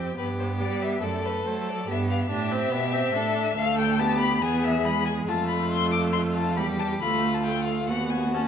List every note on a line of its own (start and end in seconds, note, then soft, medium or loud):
0.00 0.17 F2 medium
0.00 0.17 C4 medium
0.00 0.17 G4 medium
0.00 0.15 G5 medium
0.17 0.62 G2 medium
0.17 1.04 B3 medium
0.17 1.02 G4 medium
0.17 0.26 B4 loud
0.39 0.47 C5 medium
0.60 1.02 G3 medium
0.60 0.83 D5 loud
0.82 1.05 E5 medium
1.02 1.44 F#2 medium
1.02 1.45 A3 medium
1.02 1.89 A4 medium
1.02 1.27 D5 medium
1.25 1.47 B4 medium
1.45 1.87 F#3 medium
1.45 1.88 A3 medium
1.45 1.70 C5 medium
1.69 1.89 D5 medium
1.88 2.28 G2 medium
1.88 2.29 B3 medium
1.88 2.29 G4 medium
1.88 1.99 E5 loud
2.11 2.21 F5 medium
2.20 3.59 E5 loud
2.29 2.71 A2 medium
2.29 2.53 D4 medium
2.29 3.12 G4 medium
2.52 2.73 C4 medium
2.71 3.13 B2 medium
2.71 2.94 B3 medium
2.93 3.16 C4 medium
3.13 3.55 A2 medium
3.13 3.56 D4 medium
3.13 3.56 A4 medium
3.55 4.43 D2 medium
3.55 4.01 A3 medium
3.55 4.02 A4 medium
3.55 3.78 F5 loud
3.79 4.01 G5 loud
3.99 4.41 B3 medium
3.99 4.42 G4 medium
3.99 4.20 A5 loud
4.20 4.43 B5 loud
4.41 5.26 E2 medium
4.41 4.84 B3 medium
4.41 5.30 G#4 medium
4.41 4.65 G#5 loud
4.64 4.86 E5 loud
4.85 5.31 G#3 medium
4.85 5.05 B5 loud
5.06 5.14 G#5 loud
5.27 6.59 F2 medium
5.27 6.59 A3 medium
5.27 6.13 F4 medium
5.27 5.48 A5 loud
5.49 5.70 B5 loud
5.72 5.91 C6 loud
5.92 6.00 D6 loud
6.12 6.59 F4 medium
6.12 6.20 C6 loud
6.36 6.56 A5 medium
6.56 7.01 E2 medium
6.56 7.02 G3 medium
6.56 7.04 G4 medium
6.56 6.64 B5 loud
6.79 6.87 A5 loud
7.01 7.89 D2 medium
7.01 7.44 A3 medium
7.01 7.91 F4 medium
7.01 7.36 B5 loud
7.34 7.45 A5 medium
7.44 7.92 A3 medium
7.44 7.65 G5 loud
7.64 7.88 F5 medium
7.87 8.48 D#2 medium
7.87 8.36 B3 medium
7.87 8.48 F#4 medium
7.87 8.12 F#5 loud
8.10 8.33 G#5 medium
8.34 8.48 C#4 medium
8.34 8.48 A5 medium